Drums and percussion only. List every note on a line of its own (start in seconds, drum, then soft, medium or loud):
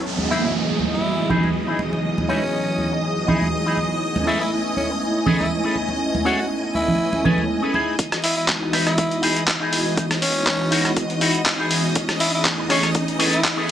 0.19 high conga medium
0.79 high conga medium
1.30 low conga medium
1.44 high conga medium
1.79 muted conga medium
1.93 muted conga soft
2.18 high conga medium
2.78 high conga medium
3.28 low conga medium
3.42 high conga medium
3.77 muted conga medium
4.16 high conga medium
4.77 high conga medium
5.27 low conga medium
5.40 high conga medium
5.76 muted conga soft
5.89 muted conga soft
6.15 high conga medium
6.75 high conga medium
6.88 low conga medium
7.13 muted conga medium
7.25 low conga medium
7.38 high conga medium
7.74 muted conga medium
7.99 kick loud
7.99 closed hi-hat medium
8.12 cross-stick medium
8.12 closed hi-hat medium
8.24 open hi-hat loud
8.48 kick loud
8.48 clap loud
8.48 closed hi-hat medium
8.73 cross-stick medium
8.73 open hi-hat loud
8.87 cross-stick medium
8.87 closed hi-hat soft
8.98 kick loud
8.98 closed hi-hat medium
9.11 closed hi-hat soft
9.23 open hi-hat medium
9.36 closed hi-hat soft
9.48 kick loud
9.48 clap loud
9.48 closed hi-hat medium
9.73 open hi-hat loud
9.97 kick loud
9.97 closed hi-hat medium
10.11 cross-stick medium
10.11 closed hi-hat soft
10.22 open hi-hat loud
10.47 kick loud
10.47 clap loud
10.47 closed hi-hat medium
10.72 open hi-hat loud
10.85 cross-stick medium
10.85 closed hi-hat soft
10.97 kick loud
10.97 closed hi-hat medium
11.10 closed hi-hat soft
11.21 open hi-hat loud
11.35 closed hi-hat soft
11.46 kick loud
11.46 clap loud
11.46 closed hi-hat medium
11.71 open hi-hat loud
11.95 kick loud
11.95 closed hi-hat medium
12.09 cross-stick medium
12.09 closed hi-hat soft
12.20 open hi-hat loud
12.45 kick loud
12.45 clap loud
12.45 closed hi-hat medium
12.70 cross-stick medium
12.70 open hi-hat loud
12.83 cross-stick medium
12.83 closed hi-hat soft
12.95 kick loud
12.95 closed hi-hat medium
13.08 closed hi-hat soft
13.20 open hi-hat loud
13.33 closed hi-hat soft
13.44 kick loud
13.44 clap loud
13.44 closed hi-hat medium